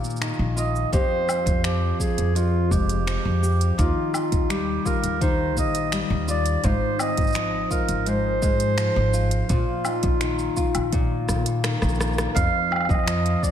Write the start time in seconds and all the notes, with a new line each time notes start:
Already playing: A#2 D#3 A#3 D#4 F4
0.04 cabasa
0.10 cabasa
0.16 cabasa
0.21 D#3, finger snap, cabasa
0.33 cabasa
0.39 A#1
0.56 F4 D#5, cabasa
0.76 cabasa
0.93 F2 G4 C5, kick, closed hi-hat, cabasa
1.28 F4, cabasa, low woodblock
1.46 F2, kick, closed hi-hat, cabasa
1.64 F3 G4, finger snap, closed hi-hat, cabasa
2.00 G#4, kick, cabasa
2.18 F2, closed hi-hat, cabasa
2.35 F2 F4, closed hi-hat, cabasa
2.71 F1 G#3 G4, kick, cabasa
2.89 closed hi-hat, cabasa
3.07 F3, finger snap, closed hi-hat, cabasa
3.25 F2
3.43 G4, cabasa
3.61 closed hi-hat, cabasa
3.78 D#2 D#3 F4, kick, closed hi-hat, cabasa
4.14 D#4 F4, cabasa, low woodblock
4.32 D#2, kick, closed hi-hat, cabasa
4.50 G3 G4, finger snap, closed hi-hat, cabasa
4.85 F4 A#4, kick, cabasa
5.04 D#2, closed hi-hat, cabasa
5.21 D#3 C5, kick, closed hi-hat, cabasa
5.57 A#1 A#3 D#5, kick, cabasa
5.75 closed hi-hat, cabasa
5.92 G3, finger snap, closed hi-hat, cabasa
6.10 D#2
6.28 F4 D5, cabasa
6.46 closed hi-hat, cabasa
6.64 G#1 G#2 F4 C5, kick, closed hi-hat, cabasa
6.99 C4 D#5, cabasa, low woodblock
7.17 G#1, kick, closed hi-hat, cabasa
7.21 cabasa
7.24 cabasa
7.27 cabasa
7.30 cabasa
7.32 F3, finger snap, closed hi-hat, cabasa
7.36 cabasa
7.70 F4 A#4, kick, cabasa
7.89 G#1, closed hi-hat, cabasa
8.06 G#2 C5, closed hi-hat, cabasa
8.42 G#2 G#3, kick, cabasa
8.60 closed hi-hat, cabasa
8.78 F3, finger snap, closed hi-hat, cabasa
8.96 G#1
9.13 F4, cabasa
9.31 closed hi-hat, cabasa
9.49 A#1 A#2 F4, kick, closed hi-hat, cabasa
9.85 D#4, cabasa, low woodblock
10.03 A#1, kick, closed hi-hat, cabasa
10.21 D#3, finger snap, closed hi-hat, cabasa
10.39 cabasa
10.56 F4, kick, cabasa
10.75 A#1, closed hi-hat, cabasa, low woodblock
10.92 A#2, kick, closed hi-hat, cabasa
11.28 A#2 A#3, kick, cross-stick, cabasa
11.46 closed hi-hat, cabasa
11.64 D#3, finger snap, cross-stick, closed hi-hat, cabasa
11.82 A#1, cross-stick, cabasa
11.89 cabasa
11.95 cabasa
11.99 F4, cross-stick, cabasa
12.13 cabasa
12.18 cross-stick, closed hi-hat, cabasa
12.35 F2 F5, kick, closed hi-hat, cabasa
12.71 F4, low woodblock
12.76 low woodblock
12.81 low woodblock
12.85 kick, low woodblock
12.89 F2 D#5, cabasa, low woodblock
12.94 low woodblock
12.99 low woodblock
13.03 F3, low woodblock
13.07 finger snap, closed hi-hat, cabasa
13.26 closed hi-hat
13.43 D5, kick, cabasa